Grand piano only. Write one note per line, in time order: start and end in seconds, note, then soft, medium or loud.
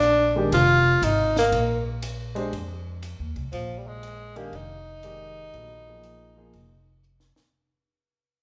0.36 0.51 D#3 medium
0.36 0.51 G#3 medium
0.36 0.52 D4 medium
0.36 0.52 G4 medium
2.35 2.51 G#3 medium
2.35 2.51 D4 medium
2.35 2.51 G4 medium
2.35 2.52 C5 medium
4.36 4.51 D#3 medium
4.36 4.52 G#3 medium
4.36 4.52 D4 medium
4.36 4.52 G4 medium
5.04 5.80 D#3 medium
5.04 5.80 G#3 medium
5.04 5.81 G4 medium
5.04 5.81 D5 medium
5.54 5.83 F#3 medium
5.54 5.84 B3 soft
5.54 5.84 E4 soft
5.54 5.84 A4 medium
5.87 6.30 F3 medium
5.87 6.30 A#3 soft
5.87 6.31 D#4 soft
5.87 6.31 G#4 medium
6.36 6.51 F3 medium
6.36 6.52 A#3 medium
6.36 6.52 D#4 medium
6.36 6.53 G#4 medium